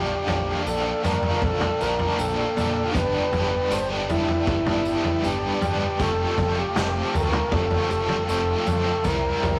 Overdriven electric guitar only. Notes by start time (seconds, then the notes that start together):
Already playing: A#2 D3 F3 A#3 D4
0.26 D3 F3 A#3 D4
0.64 A#2 D3 F3 A#3 D4
0.83 F3 A#3 D4
1.02 D3 F3 A#3 D4
1.21 F3 A#3 D4
1.59 F3 A#3 D4
1.79 D3 F3 A#3 D4
1.98 F3 A#3 D4
2.16 A#2 D3 F3 A#3 D4
2.56 D3 F3 A#3 D4
2.74 F3 A#3 D4
2.92 G2 D3 G3 B3 D4
3.32 D3 G3 B3 D4
3.69 G2 D3 G3 B3 D4
3.88 G3 B3 D4
4.08 D3 G3 B3 D4
4.28 G3 B3 D4
4.66 G3 B3 D4
4.85 D3 G3 B3 D4
5.04 G3 B3 D4
5.22 G2 D3 G3 B3 D4
5.59 D3 G3 B3 D4
5.78 G3 B3 D4
5.99 F2 C3 F3 A3 C4
6.37 C3 F3 A3 C4
6.74 F2 C3 F3 A3 C4
6.93 F3 A3 C4
7.12 C3 F3 A3 C4
7.31 A3 C4
7.35 F3
7.69 A3 C4
7.73 F3
7.88 C3 F3 A3 C4
8.08 F3 A3 C4
8.26 F2 C3 F3 A3
8.30 C4
8.66 C3 F3 A3 C4
8.84 F3 A3 C4
9.04 C3 G3 C4 E4
9.41 C3 G3 C4 E4